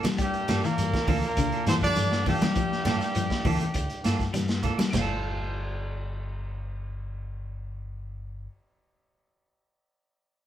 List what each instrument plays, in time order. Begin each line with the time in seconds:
0.03 fingered electric bass G3, snare, closed hi-hat, high conga, claves, shekere
0.18 bass trombone G2, clean electric guitar G3, tenor saxophone G3, trumpet G4, kick, closed hi-hat, shekere
0.34 muted fingered electric bass stroke, closed hi-hat
0.48 fingered electric bass G2, clean electric guitar A#3 D4 F4 A4, snare, closed hi-hat, high conga, claves, shekere
0.64 bass trombone A#2, clean electric guitar E3 D4 F4, tenor saxophone A#3, trumpet A#4, muted clean electric guitar stroke, snare, shekere
0.78 fingered electric bass G2, closed hi-hat, shekere
0.94 kick, snare, closed hi-hat, high conga
1.07 fingered electric bass D2, clean electric guitar F3 A#3 D4 F4 A4, kick, open hi-hat, high conga, low conga, claves, shekere
1.23 bass trombone A#2, tenor saxophone A#3, closed hi-hat, shekere
1.27 trumpet A#4
1.37 fingered electric bass D2, clean electric guitar D3, kick, closed hi-hat, claves, shekere
1.52 clean electric guitar D4 F4 A4, closed hi-hat
1.66 fingered electric bass G2, clean electric guitar E3 A#3 D4 F4 A4, tenor saxophone C4, trumpet C5, snare, closed hi-hat, low conga, shekere
1.70 bass trombone C3
1.81 clean electric guitar F3, tenor saxophone D4, trumpet D5, kick, closed hi-hat, shekere
1.85 bass trombone D3
1.95 fingered electric bass G2, closed hi-hat, high conga, claves, shekere
2.12 snare
2.26 bass trombone G2, clean electric guitar E3 A#3 D4 F4 A4, tenor saxophone G3, trumpet G4, kick, open hi-hat, low conga, shekere
2.41 fingered electric bass G3, snare, closed hi-hat, high conga, claves, shekere
2.55 clean electric guitar F3, kick, closed hi-hat, shekere
2.72 muted fingered electric bass stroke, snare
2.85 fingered electric bass G2, clean electric guitar G3 A#3 D4 F4 A4, snare, closed hi-hat, high conga, low conga, claves, shekere
3.01 snare, shekere
3.15 fingered electric bass G2, clean electric guitar F3, closed hi-hat, shekere
3.30 kick, snare, closed hi-hat
3.44 fingered electric bass D2, clean electric guitar E3 A#3 D4 F4 A4, kick, open hi-hat, high conga, low conga, claves, shekere
3.60 closed hi-hat, high conga, shekere
3.74 fingered electric bass D2, muted clean electric guitar stroke, kick, closed hi-hat, claves, shekere
3.90 closed hi-hat
4.04 fingered electric bass G2, clean electric guitar A#3 D4 F4 A4, snare, closed hi-hat, shekere
4.20 kick, snare, closed hi-hat, shekere
4.33 fingered electric bass G2, clean electric guitar G3, snare, closed hi-hat, high conga, claves, shekere
4.48 snare, closed hi-hat
4.63 clean electric guitar A#3 D4 F4 A4, kick, snare, closed hi-hat, low conga, shekere
4.78 fingered electric bass G3, snare, closed hi-hat, high conga, claves, shekere
4.90 fingered electric bass G1, clean electric guitar G2, muted clean electric guitar stroke, floor tom, crash, low conga, claves, shekere
4.94 clean electric guitar F4, muted clean electric guitar stroke, snare
5.01 clean electric guitar A4